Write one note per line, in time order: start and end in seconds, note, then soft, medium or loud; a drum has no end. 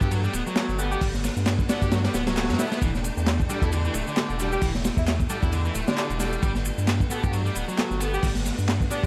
0.00 0.28 G2 medium
0.00 9.06 A3 medium
0.00 2.78 B3 medium
0.00 0.10 B3 medium
0.00 0.10 F#4 medium
0.00 0.10 G4 medium
0.00 0.11 G4 loud
0.00 0.10 A4 medium
0.00 0.97 G5 medium
0.00 kick loud
0.00 shaker soft
0.11 0.20 F#3 medium
0.11 ride loud
0.11 shaker soft
0.24 0.33 G3 loud
0.24 shaker soft
0.33 0.42 D1 medium
0.33 0.42 B3 medium
0.33 ride medium
0.33 shaker medium
0.47 0.78 F#3 medium
0.47 shaker soft
0.56 0.68 B3 medium
0.56 0.68 F#4 medium
0.56 0.68 G4 medium
0.56 0.68 A4 medium
0.56 snare loud
0.56 clap loud
0.56 ride medium
0.56 shaker soft
0.69 0.96 G1 loud
0.69 shaker soft
0.79 0.90 B3 medium
0.79 1.00 B3 loud
0.79 0.90 F#4 medium
0.79 0.90 G4 medium
0.79 0.90 A4 loud
0.79 shaker medium
0.91 1.07 G4 medium
0.91 shaker soft
1.01 1.30 G1 loud
1.01 1.10 G3 medium
1.01 2.80 F#5 medium
1.01 kick loud
1.01 open hi-hat medium
1.01 shaker soft
1.14 snare soft
1.14 shaker soft
1.24 snare medium
1.24 ride medium
1.24 shaker medium
1.36 1.63 G2 medium
1.36 shaker soft
1.46 snare loud
1.46 clap loud
1.46 ride loud
1.46 shaker soft
1.59 kick loud
1.59 shaker soft
1.69 1.80 B3 medium
1.69 1.80 B3 loud
1.69 1.86 D4 medium
1.69 1.80 F#4 medium
1.69 1.80 G4 medium
1.69 1.80 A4 loud
1.69 snare loud
1.69 ride medium
1.69 shaker medium
1.82 2.09 G2 medium
1.82 1.91 B3 medium
1.82 1.91 F#4 medium
1.82 1.91 G4 medium
1.82 1.91 G4 loud
1.82 1.91 A4 medium
1.82 kick medium
1.82 shaker soft
1.91 2.00 F#3 medium
1.91 snare loud
1.91 ride medium
1.91 shaker soft
2.04 2.13 G3 loud
2.04 snare loud
2.04 ride medium
2.04 shaker soft
2.14 2.51 D1 loud
2.14 2.23 B3 medium
2.14 snare loud
2.14 ride medium
2.14 shaker medium
2.27 2.58 F#3 medium
2.27 snare loud
2.27 ride medium
2.27 shaker soft
2.37 2.48 B3 medium
2.37 2.48 F#4 medium
2.37 2.48 G4 medium
2.37 2.48 A4 medium
2.37 snare medium
2.37 clap loud
2.37 ride medium
2.37 shaker soft
2.43 snare medium
2.43 ride medium
2.49 2.56 G2 medium
2.49 snare medium
2.49 ride medium
2.49 shaker soft
2.54 snare medium
2.54 ride medium
2.59 2.81 B3 loud
2.59 2.71 B3 loud
2.59 2.67 E4 medium
2.59 2.71 F#4 medium
2.59 2.71 G4 medium
2.59 2.71 A4 loud
2.59 snare loud
2.59 ride medium
2.59 shaker medium
2.72 2.78 E4 medium
2.72 snare loud
2.72 ride medium
2.72 shaker soft
2.82 3.10 E1 loud
2.82 2.90 E3 medium
2.82 4.61 D4 medium
2.82 8.19 G5 medium
2.82 kick loud
2.82 ride medium
2.82 shaker soft
2.95 snare soft
2.95 shaker soft
3.04 ride medium
3.04 shaker medium
3.17 3.44 E2 medium
3.17 shaker soft
3.26 snare loud
3.26 clap loud
3.26 ride medium
3.26 shaker soft
3.40 kick loud
3.40 shaker soft
3.49 3.61 G3 loud
3.49 3.60 D4 medium
3.49 3.60 F#4 medium
3.49 3.60 G4 medium
3.49 3.60 A4 loud
3.49 ride medium
3.49 shaker medium
3.62 3.89 E2 medium
3.62 3.71 D4 medium
3.62 3.71 E4 loud
3.62 3.71 F#4 medium
3.62 3.71 G4 medium
3.62 3.71 A4 medium
3.62 kick medium
3.62 shaker soft
3.72 3.81 D3 medium
3.72 ride medium
3.72 shaker soft
3.85 3.94 E3 loud
3.85 shaker soft
3.94 4.03 D1 medium
3.94 4.03 A3 medium
3.94 ride medium
3.94 shaker medium
4.07 4.39 D3 medium
4.07 shaker soft
4.17 4.29 D4 medium
4.17 4.29 F#4 medium
4.17 4.29 G4 medium
4.17 4.29 A4 medium
4.17 snare loud
4.17 clap loud
4.17 ride medium
4.17 shaker soft
4.29 4.57 E1 loud
4.29 shaker soft
4.40 4.61 G3 loud
4.40 4.51 D4 medium
4.40 4.51 F#4 medium
4.40 4.51 G4 medium
4.40 4.51 A4 loud
4.40 ride medium
4.40 shaker medium
4.52 4.68 G4 medium
4.52 shaker soft
4.62 4.90 E1 loud
4.62 4.71 E3 medium
4.62 6.41 E4 medium
4.62 kick loud
4.62 open hi-hat medium
4.62 shaker soft
4.75 snare medium
4.75 shaker soft
4.85 snare loud
4.85 ride medium
4.85 shaker medium
4.97 5.24 E2 loud
4.97 5.04 E4 medium
4.97 kick medium
4.97 shaker soft
5.07 5.15 E4 medium
5.07 snare loud
5.07 clap loud
5.07 ride medium
5.07 shaker soft
5.20 kick loud
5.20 shaker soft
5.30 5.41 G3 loud
5.30 5.41 D4 medium
5.30 5.41 F#4 medium
5.30 5.41 G4 medium
5.30 5.41 A4 loud
5.30 ride medium
5.30 shaker medium
5.42 5.70 E2 medium
5.42 5.52 D4 medium
5.42 5.52 E4 loud
5.42 5.52 F#4 medium
5.42 5.52 G4 medium
5.42 5.52 A4 medium
5.42 kick loud
5.42 shaker soft
5.52 5.61 D3 medium
5.52 ride medium
5.52 shaker soft
5.65 5.74 E3 loud
5.65 shaker soft
5.74 5.83 D1 medium
5.74 5.83 A3 medium
5.74 ride medium
5.74 shaker medium
5.87 6.19 D3 medium
5.87 5.94 D4 medium
5.87 snare loud
5.87 shaker soft
5.97 6.09 D4 medium
5.97 6.06 D4 medium
5.97 6.09 F#4 medium
5.97 6.09 G4 medium
5.97 6.09 A4 medium
5.97 clap loud
5.97 ride medium
5.97 shaker soft
6.10 6.37 E1 loud
6.10 ride soft
6.10 shaker soft
6.20 6.41 G3 loud
6.20 6.32 D4 medium
6.20 6.32 F#4 medium
6.20 6.32 G4 medium
6.20 6.32 A4 loud
6.20 snare soft
6.20 ride medium
6.20 shaker medium
6.33 ride soft
6.33 shaker soft
6.43 6.71 G1 loud
6.43 6.51 G3 medium
6.43 9.06 B3 medium
6.43 kick loud
6.43 ride medium
6.43 shaker soft
6.55 snare soft
6.55 shaker soft
6.65 ride medium
6.65 shaker medium
6.78 7.05 G2 medium
6.78 shaker soft
6.87 snare loud
6.87 clap loud
6.87 ride medium
6.87 shaker soft
7.00 kick loud
7.00 shaker soft
7.10 7.22 B3 loud
7.10 7.21 B3 medium
7.10 7.21 F#4 medium
7.10 7.21 G4 medium
7.10 7.21 A4 loud
7.10 ride medium
7.10 shaker medium
7.23 7.50 G2 medium
7.23 7.32 B3 medium
7.23 7.32 F#4 medium
7.23 7.32 G4 loud
7.23 7.32 G4 medium
7.23 7.32 A4 medium
7.23 kick loud
7.23 shaker soft
7.33 7.41 F#3 medium
7.33 ride medium
7.33 shaker soft
7.45 7.54 G3 loud
7.45 shaker soft
7.55 7.64 D1 medium
7.55 7.64 B3 medium
7.55 ride medium
7.55 shaker medium
7.68 7.99 F#3 medium
7.68 shaker soft
7.78 7.90 B3 medium
7.78 7.90 F#4 medium
7.78 7.90 G4 medium
7.78 7.90 A4 medium
7.78 snare loud
7.78 clap loud
7.78 ride medium
7.78 shaker soft
7.91 8.18 G1 loud
7.91 shaker soft
8.00 8.22 B3 loud
8.00 8.12 B3 loud
8.00 8.12 F#4 medium
8.00 8.12 G4 medium
8.00 8.12 A4 loud
8.00 ride medium
8.00 shaker medium
8.14 8.29 G4 medium
8.14 shaker soft
8.23 8.51 G1 loud
8.23 8.32 G3 medium
8.23 9.06 F#5 medium
8.23 kick loud
8.23 open hi-hat medium
8.23 shaker soft
8.35 snare soft
8.35 shaker soft
8.45 snare soft
8.45 ride medium
8.45 shaker medium
8.58 8.85 G2 loud
8.58 shaker soft
8.68 snare loud
8.68 clap loud
8.68 ride loud
8.68 shaker soft
8.81 kick loud
8.81 shaker soft
8.90 9.02 B3 loud
8.90 9.02 B3 medium
8.90 9.06 D4 medium
8.90 9.02 F#4 medium
8.90 9.02 G4 medium
8.90 9.02 A4 loud
8.90 ride medium
8.90 shaker medium
9.03 9.06 G2 medium
9.03 9.06 B3 medium
9.03 9.06 F#4 medium
9.03 9.06 G4 loud
9.03 9.06 G4 medium
9.03 9.06 A4 medium
9.03 kick loud